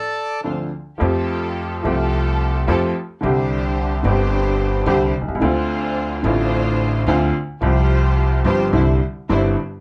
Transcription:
0.00 0.41 A4 medium
0.00 0.40 D5 medium
0.43 0.68 D2 soft
0.43 0.68 D3 soft
0.43 0.68 F3 soft
0.43 0.68 C4 soft
0.43 0.67 D4 soft
0.43 0.68 D4 soft
0.43 0.68 F4 soft
0.43 0.68 A4 soft
0.43 0.68 C5 soft
0.98 1.80 F2 medium
0.98 0.99 F3 medium
0.98 1.80 F3 medium
0.98 1.79 A3 medium
0.98 1.80 C4 medium
0.98 1.80 F4 medium
0.98 1.80 G4 medium
0.98 1.80 A4 medium
1.02 1.81 G4 medium
1.83 2.64 C2 medium
1.83 2.63 C3 medium
1.83 2.63 F3 medium
1.83 2.63 A3 medium
1.83 2.64 C4 medium
1.83 2.63 F4 medium
1.83 2.63 G4 medium
1.83 2.64 G4 medium
1.83 2.64 A4 medium
2.67 2.91 F2 medium
2.67 2.91 F3 medium
2.67 2.91 A3 medium
2.67 2.91 C4 medium
2.67 2.91 F4 medium
2.67 2.91 G4 medium
2.67 2.91 A4 medium
3.21 4.01 C2 medium
3.21 4.01 C3 medium
3.21 4.00 D3 medium
3.21 4.00 G3 medium
3.21 4.01 C4 medium
3.21 4.01 D4 medium
3.21 4.01 G4 medium
3.21 4.01 C5 medium
3.25 4.02 G4 medium
4.03 4.82 G1 medium
4.03 4.83 G1 medium
4.03 4.83 G2 medium
4.03 4.82 D3 medium
4.03 4.82 G3 medium
4.03 4.83 C4 medium
4.03 4.83 D4 medium
4.03 4.83 G4 medium
4.03 4.84 G4 medium
4.03 4.83 C5 medium
4.86 5.09 C2 medium
4.86 5.10 C2 medium
4.86 5.10 C3 medium
4.86 5.10 D3 medium
4.86 5.10 G3 medium
4.86 5.10 C4 medium
4.86 5.10 D4 medium
4.86 5.10 G4 medium
4.86 5.10 C5 medium
5.21 5.28 B1 soft
5.28 5.35 C2 medium
5.28 5.34 C2 medium
5.35 5.41 C#2 medium
5.35 5.42 C#2 medium
5.41 6.20 D2 medium
5.41 6.20 D3 medium
5.41 6.20 A3 medium
5.41 6.21 C4 medium
5.41 6.20 D4 medium
5.41 6.20 F4 medium
5.41 6.21 F4 medium
5.41 6.20 C5 medium
6.23 7.03 A1 medium
6.23 7.04 A1 medium
6.23 7.04 A2 medium
6.23 7.02 D3 medium
6.23 7.03 A3 medium
6.23 7.04 C4 medium
6.23 7.03 D4 medium
6.23 7.03 F4 medium
6.23 7.03 C5 medium
6.27 7.05 F4 medium
7.07 7.30 D2 medium
7.07 7.31 D2 medium
7.07 7.31 D3 medium
7.07 7.31 A3 medium
7.07 7.31 C4 medium
7.07 7.30 D4 medium
7.07 7.30 F4 medium
7.07 7.31 F4 medium
7.07 7.31 C5 medium
7.61 8.41 C2 medium
7.61 8.42 C2 medium
7.61 8.42 C3 medium
7.61 8.41 F3 medium
7.61 8.41 G3 medium
7.61 8.42 C4 medium
7.61 8.41 F4 medium
7.61 8.41 G4 medium
7.61 8.43 G4 medium
7.61 8.42 C5 medium
8.44 8.69 G1 medium
8.44 8.69 G2 medium
8.44 8.69 F3 medium
8.44 8.69 G3 medium
8.44 8.69 C4 medium
8.44 8.69 F4 medium
8.44 8.69 G4 medium
8.44 8.69 C5 medium
8.73 8.97 C2 medium
8.73 8.97 C3 medium
8.73 8.97 D3 medium
8.73 8.97 G3 medium
8.73 8.97 C4 medium
8.73 8.97 D4 medium
8.73 8.97 E4 medium
8.73 8.97 C5 medium
9.29 9.54 G1 medium
9.29 9.54 G2 medium
9.29 9.54 D3 medium
9.29 9.54 G3 medium
9.29 9.54 C4 medium
9.29 9.54 D4 medium
9.29 9.54 E4 medium
9.29 9.54 C5 medium

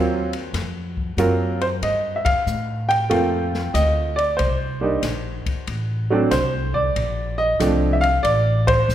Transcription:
0.00 0.52 D#2 medium
0.00 0.30 F#3 medium
0.00 0.30 A#3 medium
0.00 0.31 C4 medium
0.00 0.31 F4 medium
0.00 0.50 C5 medium
0.33 ride soft
0.53 1.16 F2 medium
0.53 snare soft
0.53 ride medium
0.97 kick soft
1.17 1.80 F#2 medium
1.17 1.57 F#3 soft
1.17 1.57 A#3 soft
1.17 1.58 C4 soft
1.17 1.58 F4 medium
1.17 1.64 A#4 medium
1.17 hi-hat pedal soft
1.17 ride medium
1.61 1.67 C5 medium
1.61 ride soft
1.82 2.22 G2 medium
1.82 2.14 D#5 medium
1.82 ride medium
2.16 2.26 E5 medium
2.25 2.86 F5 medium
2.25 muted upright bass stroke soft
2.25 kick medium
2.25 ride medium
2.46 3.09 A2 medium
2.46 hi-hat pedal medium
2.89 3.77 G5 medium
2.89 ride soft
3.10 3.73 F2 medium
3.10 4.09 A3 medium
3.10 4.09 A#3 soft
3.10 4.09 C4 medium
3.10 4.10 F4 medium
3.10 ride medium
3.54 snare soft
3.74 4.37 D2 medium
3.74 4.15 D#5 medium
3.74 hi-hat pedal medium
3.74 ride medium
4.16 4.39 D5 medium
4.16 ride soft
4.37 5.02 C2 medium
4.37 5.62 C5 medium
4.37 ride medium
4.81 5.01 G3 medium
4.81 5.01 A#3 soft
4.81 5.01 D4 soft
4.81 5.02 D#4 medium
5.03 5.43 A#1 medium
5.03 snare soft
5.03 hi-hat pedal soft
5.03 ride medium
5.46 muted upright bass stroke soft
5.46 kick medium
5.46 ride soft
5.67 6.30 A1 medium
5.67 ride soft
6.10 6.30 F#3 medium
6.10 6.30 A3 medium
6.10 6.30 C4 medium
6.10 6.30 D4 medium
6.31 6.94 C2 medium
6.31 6.76 C5 medium
6.31 snare soft
6.31 hi-hat pedal medium
6.31 ride medium
6.74 7.35 D5 medium
6.74 kick soft
6.96 7.58 A#1 medium
6.96 ride medium
7.38 7.95 D#5 medium
7.59 8.22 C2 medium
7.59 7.99 F3 medium
7.59 7.99 A3 soft
7.59 7.99 C4 soft
7.59 8.00 D4 medium
7.59 hi-hat pedal soft
7.59 ride medium
7.93 8.03 E5 medium
8.01 8.24 F5 loud
8.01 ride soft
8.23 8.87 A1 medium
8.23 8.64 D5 medium
8.23 ride medium
8.67 8.95 C5 medium
8.67 kick medium
8.67 ride medium
8.89 8.95 A#1 medium
8.89 hi-hat pedal medium

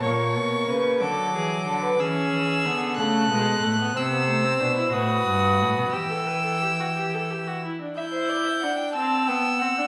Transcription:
0.02 0.38 A#2 medium
0.02 1.02 A#3 medium
0.02 0.70 C#5 medium
0.02 0.98 C#6 medium
0.36 0.68 B2 medium
0.69 1.03 C#3 medium
0.69 1.03 B4 medium
1.01 1.34 D3 medium
1.01 2.00 F#3 medium
1.01 1.35 A4 medium
1.01 2.01 D6 medium
1.35 1.67 E3 medium
1.35 1.66 G#4 medium
1.67 2.00 D3 medium
1.67 1.82 A4 medium
1.83 2.01 B4 medium
1.99 2.33 E3 medium
1.99 2.67 C#4 medium
1.99 3.00 G#4 medium
1.99 2.96 E6 medium
2.33 2.67 E3 medium
2.66 3.00 D3 medium
2.66 2.98 B3 medium
2.97 3.31 C#3 medium
2.97 3.30 A3 medium
2.97 3.95 A4 medium
2.97 3.98 F#6 medium
3.31 3.63 B2 medium
3.31 3.65 G#3 medium
3.63 3.95 A2 medium
3.63 3.79 A3 medium
3.79 3.95 B3 medium
3.96 4.60 C3 medium
3.96 4.03 C4 medium
3.96 4.95 C5 medium
3.96 4.95 E6 medium
4.12 4.27 B3 medium
4.28 4.46 A3 medium
4.44 4.62 C4 medium
4.61 4.93 B2 medium
4.61 4.76 D4 medium
4.77 4.93 E4 medium
4.93 5.26 A2 medium
4.93 5.94 F#4 medium
4.93 5.95 B4 medium
4.93 5.92 D#6 medium
5.28 5.63 G2 medium
5.61 5.77 A2 medium
5.78 5.84 B2 medium
5.93 7.60 E3 medium
5.93 6.12 G4 medium
5.93 7.63 G5 medium
5.93 7.60 E6 medium
6.10 6.29 A4 medium
6.27 6.44 B4 medium
6.44 6.61 A4 medium
6.62 6.69 G4 medium
6.80 6.87 F#4 medium
6.97 7.16 G4 medium
7.14 7.32 A4 medium
7.31 7.49 G4 medium
7.47 7.64 F#4 medium
7.64 7.81 E4 medium
7.82 7.97 D4 medium
7.97 8.65 E4 medium
7.97 8.04 E5 medium
7.97 8.92 G6 medium
8.12 8.31 C5 medium
8.29 8.45 D5 medium
8.46 8.52 E5 medium
8.61 8.96 D4 medium
8.61 8.77 F#5 medium
8.77 8.93 G5 medium
8.93 9.30 C4 medium
8.93 9.28 A5 medium
8.93 9.87 E6 medium
9.26 9.63 B3 medium
9.26 9.61 G5 medium
9.60 9.78 C4 medium
9.60 9.87 F#5 medium
9.78 9.84 D4 medium

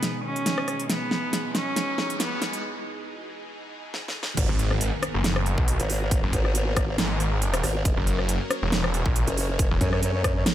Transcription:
0.00 4.33 B2 medium
0.00 0.86 D#3 medium
0.00 4.33 G#3 medium
0.00 0.16 B3 loud
0.00 4.33 D#4 medium
0.00 4.33 G#4 medium
0.00 snare medium
0.00 closed hi-hat medium
0.00 riser medium
0.24 0.81 C#4 medium
0.36 closed hi-hat medium
0.46 snare medium
0.46 closed hi-hat medium
0.58 cross-stick medium
0.68 cross-stick soft
0.68 closed hi-hat medium
0.80 closed hi-hat medium
0.89 4.34 E3 medium
0.89 1.47 B3 loud
0.89 snare medium
0.89 closed hi-hat medium
1.11 snare medium
1.33 snare medium
1.33 closed hi-hat medium
1.55 2.12 C#4 medium
1.55 snare medium
1.55 closed hi-hat medium
1.76 snare medium
1.76 closed hi-hat medium
1.98 snare medium
2.10 closed hi-hat medium
2.20 2.53 B3 medium
2.20 snare medium
2.20 closed hi-hat medium
2.42 snare medium
2.42 closed hi-hat medium
2.53 closed hi-hat medium
3.94 snare medium
4.08 snare medium
4.23 snare loud
4.37 4.47 G#1 loud
4.37 7.82 D#3 medium
4.37 10.54 A#3 medium
4.37 7.82 B3 medium
4.37 7.82 G#4 medium
4.37 10.54 A#4 medium
4.37 kick loud
4.37 closed hi-hat medium
4.37 crash loud
4.37 impact medium
4.49 4.91 G#1 medium
4.59 closed hi-hat medium
4.71 cross-stick medium
4.81 closed hi-hat medium
5.03 cross-stick medium
5.03 closed hi-hat medium
5.14 5.56 F#1 loud
5.24 snare loud
5.24 closed hi-hat medium
5.36 cross-stick medium
5.46 closed hi-hat medium
5.58 5.78 B1 loud
5.58 kick loud
5.68 closed hi-hat medium
5.80 6.21 G#1 loud
5.80 closed hi-hat medium
5.90 open hi-hat loud
6.11 kick loud
6.11 closed hi-hat medium
6.23 6.31 F#1 loud
6.33 6.97 G#1 loud
6.33 kick medium
6.33 closed hi-hat medium
6.45 cross-stick soft
6.55 closed hi-hat medium
6.77 kick loud
6.77 cross-stick medium
6.77 closed hi-hat medium
6.98 7.62 G#1 loud
6.98 snare loud
6.98 closed hi-hat medium
7.20 closed hi-hat medium
7.42 closed hi-hat medium
7.54 cross-stick medium
7.54 closed hi-hat medium
7.63 7.84 G#1 loud
7.63 cross-stick soft
7.63 open hi-hat medium
7.85 7.95 F#1 loud
7.85 10.54 F#3 medium
7.85 10.54 C#4 medium
7.85 10.54 C#5 medium
7.85 kick loud
7.85 closed hi-hat medium
7.97 8.39 F#1 medium
8.07 closed hi-hat medium
8.19 cross-stick soft
8.29 closed hi-hat medium
8.50 cross-stick medium
8.50 closed hi-hat medium
8.62 9.04 E1 medium
8.72 snare loud
8.72 closed hi-hat medium
8.84 cross-stick medium
8.94 closed hi-hat medium
9.06 9.25 A#1 loud
9.06 kick loud
9.16 closed hi-hat medium
9.27 9.69 F#1 loud
9.27 closed hi-hat medium
9.37 open hi-hat medium
9.59 kick loud
9.59 closed hi-hat medium
9.71 9.79 E1 loud
9.81 10.44 F#2 loud
9.81 kick medium
9.81 closed hi-hat medium
9.93 cross-stick medium
10.03 closed hi-hat medium
10.24 kick loud
10.24 cross-stick medium
10.24 closed hi-hat medium
10.46 snare loud
10.46 closed hi-hat medium

